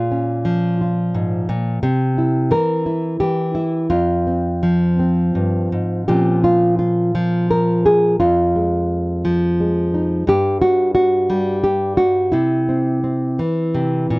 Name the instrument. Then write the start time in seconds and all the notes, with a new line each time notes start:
nylon-string guitar
Already playing: A#2 F4
0.11 C#4
0.45 F3
0.81 F4
1.15 G#2
1.49 A#2
1.83 C3
2.18 E4
2.51 E3 A#4
2.86 E4
3.20 E3 G4
3.55 E4
3.90 F2 F4
4.27 C4
4.63 F3
4.99 C4
5.35 G2
5.72 G#2
6.08 A#2 F3 C4 C#4 G4
6.44 F4
6.79 F4
7.15 F3
7.51 A#4
7.86 G#4
8.20 F2 F4
8.56 G#3
9.25 F3
9.60 G#3
9.94 D#4
10.27 G2 G4
10.62 F#4
10.95 F#4
11.30 G3
11.64 G4
11.97 F#4
12.32 C3 E4
12.69 C4
13.04 C4
13.39 E3
13.75 C3
14.10 A#2